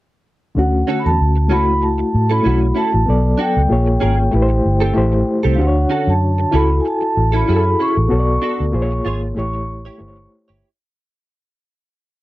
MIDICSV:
0, 0, Header, 1, 6, 480
1, 0, Start_track
1, 0, Key_signature, 2, "major"
1, 0, Tempo, 629591
1, 430, Time_signature, 4, 2, 24, 8
1, 9323, End_track
2, 0, Start_track
2, 0, Title_t, "Vibraphone"
2, 0, Program_c, 0, 11
2, 449, Note_on_c, 0, 78, 76
2, 731, Note_off_c, 0, 78, 0
2, 757, Note_on_c, 0, 83, 63
2, 807, Note_off_c, 0, 83, 0
2, 810, Note_on_c, 0, 81, 96
2, 1161, Note_on_c, 0, 83, 94
2, 1165, Note_off_c, 0, 81, 0
2, 1393, Note_on_c, 0, 81, 86
2, 1402, Note_off_c, 0, 83, 0
2, 1734, Note_off_c, 0, 81, 0
2, 1764, Note_on_c, 0, 83, 84
2, 2113, Note_on_c, 0, 81, 83
2, 2121, Note_off_c, 0, 83, 0
2, 2593, Note_on_c, 0, 79, 73
2, 2604, Note_off_c, 0, 81, 0
2, 3996, Note_off_c, 0, 79, 0
2, 4229, Note_on_c, 0, 77, 58
2, 4271, Note_off_c, 0, 77, 0
2, 4282, Note_on_c, 0, 78, 76
2, 4650, Note_on_c, 0, 81, 86
2, 4652, Note_off_c, 0, 78, 0
2, 4999, Note_on_c, 0, 83, 83
2, 5001, Note_off_c, 0, 81, 0
2, 5169, Note_off_c, 0, 83, 0
2, 5188, Note_on_c, 0, 80, 61
2, 5230, Note_off_c, 0, 80, 0
2, 5243, Note_on_c, 0, 81, 86
2, 5610, Note_on_c, 0, 83, 95
2, 5613, Note_off_c, 0, 81, 0
2, 5960, Note_on_c, 0, 85, 93
2, 5962, Note_off_c, 0, 83, 0
2, 6917, Note_on_c, 0, 84, 78
2, 6940, Note_off_c, 0, 85, 0
2, 7022, Note_off_c, 0, 84, 0
2, 7163, Note_on_c, 0, 85, 86
2, 7845, Note_off_c, 0, 85, 0
2, 9323, End_track
3, 0, Start_track
3, 0, Title_t, "Clean electric guitar"
3, 0, Program_c, 1, 27
3, 667, Note_on_c, 1, 61, 65
3, 673, Note_on_c, 1, 66, 66
3, 678, Note_on_c, 1, 69, 73
3, 829, Note_off_c, 1, 61, 0
3, 832, Note_off_c, 1, 66, 0
3, 835, Note_off_c, 1, 69, 0
3, 1141, Note_on_c, 1, 61, 60
3, 1145, Note_on_c, 1, 64, 62
3, 1151, Note_on_c, 1, 69, 69
3, 1259, Note_off_c, 1, 69, 0
3, 1268, Note_off_c, 1, 64, 0
3, 1306, Note_off_c, 1, 61, 0
3, 1750, Note_on_c, 1, 69, 64
3, 1758, Note_on_c, 1, 64, 55
3, 1762, Note_on_c, 1, 61, 50
3, 1850, Note_off_c, 1, 61, 0
3, 1859, Note_off_c, 1, 64, 0
3, 1859, Note_on_c, 1, 61, 66
3, 1862, Note_off_c, 1, 69, 0
3, 1869, Note_on_c, 1, 64, 67
3, 1871, Note_on_c, 1, 69, 70
3, 1982, Note_off_c, 1, 69, 0
3, 1991, Note_off_c, 1, 64, 0
3, 2024, Note_off_c, 1, 61, 0
3, 2094, Note_on_c, 1, 61, 53
3, 2100, Note_on_c, 1, 64, 56
3, 2107, Note_on_c, 1, 69, 59
3, 2222, Note_off_c, 1, 69, 0
3, 2229, Note_off_c, 1, 64, 0
3, 2231, Note_off_c, 1, 61, 0
3, 2574, Note_on_c, 1, 62, 68
3, 2583, Note_on_c, 1, 66, 73
3, 2589, Note_on_c, 1, 69, 74
3, 2741, Note_off_c, 1, 62, 0
3, 2745, Note_off_c, 1, 66, 0
3, 2748, Note_off_c, 1, 69, 0
3, 3052, Note_on_c, 1, 61, 66
3, 3058, Note_on_c, 1, 68, 73
3, 3063, Note_on_c, 1, 70, 73
3, 3173, Note_off_c, 1, 70, 0
3, 3184, Note_off_c, 1, 68, 0
3, 3220, Note_off_c, 1, 61, 0
3, 3662, Note_on_c, 1, 69, 66
3, 3667, Note_on_c, 1, 67, 56
3, 3674, Note_on_c, 1, 60, 49
3, 3766, Note_off_c, 1, 60, 0
3, 3771, Note_off_c, 1, 67, 0
3, 3775, Note_off_c, 1, 69, 0
3, 4142, Note_on_c, 1, 69, 65
3, 4151, Note_on_c, 1, 67, 52
3, 4158, Note_on_c, 1, 60, 48
3, 4294, Note_off_c, 1, 69, 0
3, 4299, Note_off_c, 1, 67, 0
3, 4302, Note_off_c, 1, 60, 0
3, 4494, Note_on_c, 1, 61, 61
3, 4500, Note_on_c, 1, 66, 72
3, 4505, Note_on_c, 1, 69, 72
3, 4659, Note_off_c, 1, 61, 0
3, 4662, Note_off_c, 1, 66, 0
3, 4665, Note_off_c, 1, 69, 0
3, 4975, Note_on_c, 1, 61, 68
3, 4983, Note_on_c, 1, 64, 69
3, 4988, Note_on_c, 1, 69, 77
3, 5101, Note_off_c, 1, 69, 0
3, 5110, Note_off_c, 1, 64, 0
3, 5139, Note_off_c, 1, 61, 0
3, 5582, Note_on_c, 1, 69, 63
3, 5591, Note_on_c, 1, 64, 66
3, 5595, Note_on_c, 1, 61, 54
3, 5690, Note_off_c, 1, 61, 0
3, 5696, Note_off_c, 1, 64, 0
3, 5699, Note_on_c, 1, 61, 66
3, 5702, Note_off_c, 1, 69, 0
3, 5705, Note_on_c, 1, 64, 72
3, 5711, Note_on_c, 1, 69, 78
3, 5823, Note_off_c, 1, 69, 0
3, 5829, Note_off_c, 1, 64, 0
3, 5861, Note_off_c, 1, 61, 0
3, 5942, Note_on_c, 1, 61, 53
3, 5948, Note_on_c, 1, 64, 60
3, 5954, Note_on_c, 1, 69, 58
3, 6062, Note_off_c, 1, 69, 0
3, 6070, Note_off_c, 1, 64, 0
3, 6072, Note_off_c, 1, 61, 0
3, 6417, Note_on_c, 1, 62, 68
3, 6424, Note_on_c, 1, 66, 68
3, 6433, Note_on_c, 1, 69, 79
3, 6581, Note_off_c, 1, 62, 0
3, 6584, Note_off_c, 1, 66, 0
3, 6589, Note_off_c, 1, 69, 0
3, 6897, Note_on_c, 1, 65, 65
3, 6904, Note_on_c, 1, 68, 64
3, 6911, Note_on_c, 1, 73, 79
3, 7023, Note_off_c, 1, 73, 0
3, 7031, Note_off_c, 1, 68, 0
3, 7061, Note_off_c, 1, 65, 0
3, 7511, Note_on_c, 1, 73, 61
3, 7518, Note_on_c, 1, 67, 56
3, 7521, Note_on_c, 1, 64, 49
3, 7610, Note_off_c, 1, 64, 0
3, 7614, Note_off_c, 1, 67, 0
3, 7620, Note_off_c, 1, 73, 0
3, 7990, Note_on_c, 1, 73, 69
3, 7997, Note_on_c, 1, 67, 64
3, 8001, Note_on_c, 1, 64, 57
3, 8140, Note_off_c, 1, 73, 0
3, 8144, Note_off_c, 1, 67, 0
3, 8145, Note_off_c, 1, 64, 0
3, 9323, End_track
4, 0, Start_track
4, 0, Title_t, "Reed electric piano"
4, 0, Program_c, 2, 4
4, 419, Note_on_c, 2, 50, 65
4, 431, Note_on_c, 2, 57, 56
4, 440, Note_on_c, 2, 61, 56
4, 449, Note_on_c, 2, 66, 72
4, 579, Control_c, 2, 64, 127
4, 1131, Note_on_c, 2, 56, 55
4, 1144, Note_off_c, 2, 50, 0
4, 1144, Note_on_c, 2, 64, 61
4, 1149, Note_off_c, 2, 66, 0
4, 1150, Note_off_c, 2, 57, 0
4, 1155, Note_off_c, 2, 61, 0
4, 1158, Note_on_c, 2, 66, 76
4, 1159, Control_c, 2, 64, 0
4, 1180, Note_on_c, 2, 57, 68
4, 1194, Note_off_c, 2, 56, 0
4, 1294, Control_c, 2, 64, 127
4, 1802, Note_off_c, 2, 64, 0
4, 1809, Note_off_c, 2, 66, 0
4, 1820, Note_off_c, 2, 57, 0
4, 1850, Note_on_c, 2, 57, 59
4, 1865, Note_on_c, 2, 64, 58
4, 1880, Note_on_c, 2, 66, 70
4, 2296, Note_off_c, 2, 57, 0
4, 2303, Note_off_c, 2, 64, 0
4, 2311, Note_off_c, 2, 66, 0
4, 2333, Note_on_c, 2, 59, 68
4, 2343, Note_on_c, 2, 54, 61
4, 2352, Note_on_c, 2, 69, 60
4, 2356, Control_c, 2, 64, 0
4, 2361, Note_on_c, 2, 74, 75
4, 2468, Control_c, 2, 64, 127
4, 2810, Note_on_c, 2, 58, 71
4, 2818, Note_on_c, 2, 65, 61
4, 2819, Note_off_c, 2, 59, 0
4, 2824, Note_off_c, 2, 54, 0
4, 2828, Note_off_c, 2, 69, 0
4, 2830, Note_on_c, 2, 68, 62
4, 2833, Note_off_c, 2, 74, 0
4, 2837, Control_c, 2, 64, 0
4, 2839, Note_on_c, 2, 73, 76
4, 2970, Control_c, 2, 64, 127
4, 3255, Note_off_c, 2, 58, 0
4, 3259, Note_off_c, 2, 65, 0
4, 3265, Note_off_c, 2, 68, 0
4, 3269, Note_off_c, 2, 73, 0
4, 3289, Note_on_c, 2, 57, 79
4, 3302, Note_on_c, 2, 64, 77
4, 3313, Note_on_c, 2, 67, 67
4, 3315, Control_c, 2, 64, 0
4, 3321, Note_on_c, 2, 71, 67
4, 3366, Note_off_c, 2, 71, 0
4, 3372, Note_on_c, 2, 72, 89
4, 3432, Control_c, 2, 64, 127
4, 3733, Note_off_c, 2, 57, 0
4, 3740, Note_off_c, 2, 64, 0
4, 3745, Note_off_c, 2, 67, 0
4, 3764, Note_on_c, 2, 57, 77
4, 3773, Note_on_c, 2, 64, 68
4, 3775, Note_off_c, 2, 72, 0
4, 3783, Note_on_c, 2, 67, 75
4, 3794, Note_on_c, 2, 72, 86
4, 4211, Note_off_c, 2, 57, 0
4, 4215, Note_off_c, 2, 64, 0
4, 4220, Note_off_c, 2, 67, 0
4, 4226, Note_off_c, 2, 72, 0
4, 4244, Note_on_c, 2, 50, 72
4, 4255, Note_on_c, 2, 62, 62
4, 4263, Note_on_c, 2, 66, 61
4, 4272, Control_c, 2, 64, 0
4, 4277, Note_on_c, 2, 72, 62
4, 4323, Note_off_c, 2, 72, 0
4, 4324, Note_on_c, 2, 73, 81
4, 4394, Control_c, 2, 64, 127
4, 4967, Note_on_c, 2, 64, 68
4, 4973, Note_off_c, 2, 50, 0
4, 4974, Note_off_c, 2, 66, 0
4, 4978, Note_off_c, 2, 62, 0
4, 4983, Note_on_c, 2, 66, 64
4, 4992, Control_c, 2, 64, 0
4, 4995, Note_on_c, 2, 69, 82
4, 5013, Note_off_c, 2, 73, 0
4, 5143, Control_c, 2, 64, 127
4, 5630, Note_off_c, 2, 64, 0
4, 5638, Note_off_c, 2, 66, 0
4, 5645, Note_off_c, 2, 69, 0
4, 5689, Note_on_c, 2, 64, 66
4, 5703, Note_on_c, 2, 66, 57
4, 5720, Note_on_c, 2, 68, 56
4, 5764, Note_off_c, 2, 68, 0
4, 5767, Note_on_c, 2, 69, 75
4, 6133, Note_off_c, 2, 64, 0
4, 6140, Note_off_c, 2, 66, 0
4, 6166, Note_on_c, 2, 59, 70
4, 6172, Note_off_c, 2, 69, 0
4, 6175, Note_on_c, 2, 66, 65
4, 6182, Note_on_c, 2, 69, 65
4, 6192, Control_c, 2, 64, 0
4, 6194, Note_on_c, 2, 73, 56
4, 6241, Note_off_c, 2, 73, 0
4, 6246, Note_on_c, 2, 74, 75
4, 6344, Control_c, 2, 64, 127
4, 6650, Note_on_c, 2, 58, 78
4, 6654, Note_off_c, 2, 59, 0
4, 6657, Note_on_c, 2, 65, 81
4, 6659, Note_off_c, 2, 66, 0
4, 6662, Note_off_c, 2, 69, 0
4, 6666, Note_on_c, 2, 68, 81
4, 6674, Control_c, 2, 64, 0
4, 6675, Note_on_c, 2, 72, 80
4, 6694, Note_off_c, 2, 74, 0
4, 6722, Note_off_c, 2, 72, 0
4, 6724, Note_on_c, 2, 73, 97
4, 6799, Control_c, 2, 64, 127
4, 7094, Note_off_c, 2, 58, 0
4, 7098, Note_off_c, 2, 65, 0
4, 7103, Note_off_c, 2, 68, 0
4, 7126, Note_on_c, 2, 57, 69
4, 7131, Note_off_c, 2, 73, 0
4, 7136, Note_on_c, 2, 64, 61
4, 7145, Note_on_c, 2, 67, 64
4, 7154, Control_c, 2, 64, 0
4, 7156, Note_on_c, 2, 73, 79
4, 7288, Control_c, 2, 64, 127
4, 7573, Note_off_c, 2, 57, 0
4, 7578, Note_off_c, 2, 64, 0
4, 7583, Note_off_c, 2, 67, 0
4, 7588, Note_off_c, 2, 73, 0
4, 7608, Note_on_c, 2, 57, 64
4, 7617, Note_on_c, 2, 64, 57
4, 7624, Note_on_c, 2, 67, 58
4, 7635, Note_on_c, 2, 72, 55
4, 7683, Note_off_c, 2, 72, 0
4, 7684, Note_on_c, 2, 73, 70
4, 8055, Note_off_c, 2, 57, 0
4, 8059, Note_off_c, 2, 64, 0
4, 8063, Note_off_c, 2, 67, 0
4, 8093, Note_off_c, 2, 73, 0
4, 8115, Control_c, 2, 64, 0
4, 9323, End_track
5, 0, Start_track
5, 0, Title_t, "Fingered electric bass"
5, 0, Program_c, 3, 33
5, 433, Note_on_c, 3, 38, 89
5, 625, Note_off_c, 3, 38, 0
5, 808, Note_on_c, 3, 40, 71
5, 893, Note_off_c, 3, 40, 0
5, 920, Note_on_c, 3, 38, 75
5, 1156, Note_off_c, 3, 38, 0
5, 1156, Note_on_c, 3, 37, 75
5, 1538, Note_off_c, 3, 37, 0
5, 1635, Note_on_c, 3, 45, 83
5, 1825, Note_off_c, 3, 45, 0
5, 1873, Note_on_c, 3, 35, 80
5, 2063, Note_off_c, 3, 35, 0
5, 2243, Note_on_c, 3, 33, 86
5, 2329, Note_off_c, 3, 33, 0
5, 2353, Note_on_c, 3, 35, 89
5, 2543, Note_off_c, 3, 35, 0
5, 2719, Note_on_c, 3, 37, 70
5, 2806, Note_off_c, 3, 37, 0
5, 2827, Note_on_c, 3, 34, 88
5, 3019, Note_off_c, 3, 34, 0
5, 3069, Note_on_c, 3, 32, 76
5, 3260, Note_off_c, 3, 32, 0
5, 3307, Note_on_c, 3, 33, 104
5, 3498, Note_off_c, 3, 33, 0
5, 3548, Note_on_c, 3, 31, 81
5, 3739, Note_off_c, 3, 31, 0
5, 3786, Note_on_c, 3, 33, 81
5, 3978, Note_off_c, 3, 33, 0
5, 4154, Note_on_c, 3, 36, 87
5, 4264, Note_off_c, 3, 36, 0
5, 4264, Note_on_c, 3, 38, 94
5, 4456, Note_off_c, 3, 38, 0
5, 4631, Note_on_c, 3, 42, 77
5, 4912, Note_off_c, 3, 42, 0
5, 4983, Note_on_c, 3, 37, 88
5, 5175, Note_off_c, 3, 37, 0
5, 5468, Note_on_c, 3, 33, 79
5, 5658, Note_off_c, 3, 33, 0
5, 5710, Note_on_c, 3, 42, 74
5, 5899, Note_off_c, 3, 42, 0
5, 6079, Note_on_c, 3, 33, 81
5, 6164, Note_off_c, 3, 33, 0
5, 6188, Note_on_c, 3, 35, 92
5, 6378, Note_off_c, 3, 35, 0
5, 6558, Note_on_c, 3, 38, 61
5, 6644, Note_off_c, 3, 38, 0
5, 6663, Note_on_c, 3, 34, 88
5, 6856, Note_off_c, 3, 34, 0
5, 6905, Note_on_c, 3, 32, 78
5, 7097, Note_off_c, 3, 32, 0
5, 7144, Note_on_c, 3, 33, 100
5, 7530, Note_off_c, 3, 33, 0
5, 7627, Note_on_c, 3, 31, 84
5, 7819, Note_off_c, 3, 31, 0
5, 8003, Note_on_c, 3, 31, 85
5, 8089, Note_off_c, 3, 31, 0
5, 9323, End_track
6, 0, Start_track
6, 0, Title_t, "Muted clean electric guitar strokes"
6, 1034, Note_on_c, 9, 29, 31
6, 1110, Note_off_c, 9, 29, 0
6, 1269, Note_on_c, 9, 29, 36
6, 1345, Note_off_c, 9, 29, 0
6, 1387, Note_on_c, 9, 29, 31
6, 1463, Note_off_c, 9, 29, 0
6, 1511, Note_on_c, 9, 29, 36
6, 1587, Note_off_c, 9, 29, 0
6, 1992, Note_on_c, 9, 29, 33
6, 2068, Note_off_c, 9, 29, 0
6, 2231, Note_on_c, 9, 29, 40
6, 2307, Note_off_c, 9, 29, 0
6, 2946, Note_on_c, 9, 29, 33
6, 3023, Note_off_c, 9, 29, 0
6, 3182, Note_on_c, 9, 29, 33
6, 3259, Note_off_c, 9, 29, 0
6, 3293, Note_on_c, 9, 29, 35
6, 3369, Note_off_c, 9, 29, 0
6, 3422, Note_on_c, 9, 29, 39
6, 3498, Note_off_c, 9, 29, 0
6, 3775, Note_on_c, 9, 29, 31
6, 3852, Note_off_c, 9, 29, 0
6, 3903, Note_on_c, 9, 29, 33
6, 3980, Note_off_c, 9, 29, 0
6, 4868, Note_on_c, 9, 29, 45
6, 4944, Note_off_c, 9, 29, 0
6, 5223, Note_on_c, 9, 29, 36
6, 5299, Note_off_c, 9, 29, 0
6, 5345, Note_on_c, 9, 29, 39
6, 5422, Note_off_c, 9, 29, 0
6, 5832, Note_on_c, 9, 29, 28
6, 5908, Note_off_c, 9, 29, 0
6, 6071, Note_on_c, 9, 29, 34
6, 6148, Note_off_c, 9, 29, 0
6, 6792, Note_on_c, 9, 29, 38
6, 6868, Note_off_c, 9, 29, 0
6, 7032, Note_on_c, 9, 29, 33
6, 7108, Note_off_c, 9, 29, 0
6, 7142, Note_on_c, 9, 29, 31
6, 7218, Note_off_c, 9, 29, 0
6, 7270, Note_on_c, 9, 29, 31
6, 7346, Note_off_c, 9, 29, 0
6, 7619, Note_on_c, 9, 29, 36
6, 7695, Note_off_c, 9, 29, 0
6, 7747, Note_on_c, 9, 29, 33
6, 7823, Note_off_c, 9, 29, 0
6, 9323, End_track
0, 0, End_of_file